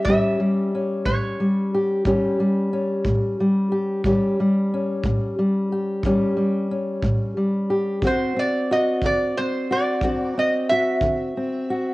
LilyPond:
<<
  \new Staff \with { instrumentName = "Resonator guitar played with a steel bar" } { \time 12/8 \key a \mixolydian \tempo 4. = 60 e''4. cis''4 r2. r8 | r1. | c''8 d''8 dis''8 d''8 c''8 d''4 dis''8 e''2 | }
  \new Staff \with { instrumentName = "Steel-string acoustic guitar" } { \time 12/8 \key a \mixolydian << { <g cis' g'>8 g8 cis'4 g8 g'8 <g cis' g'>8 g8 cis'4 g8 g'8 | <g cis' g'>8 g8 cis'4 g8 g'8 <g cis' g'>8 g8 cis'4 g8 g'8 | <c' fis'>8 c'8 fis'4 c'8 fis'8 <c' fis'>8 c'8 fis'4 c'8 fis'8 | } \\ { a,4 r8 a,4 r8 a,4 r8 a,4 r8 | a,4 r8 a,4 r8 a,4 r8 a,4 r8 | d4 r8 d4 r8 d4 r8 d4 r8 | } >> }
  \new DrumStaff \with { instrumentName = "Drums" } \drummode { \time 12/8 bd4. bd4. bd4. bd4. | bd4. bd4. bd4. bd4. | bd4. bd4. bd4. bd4. | }
>>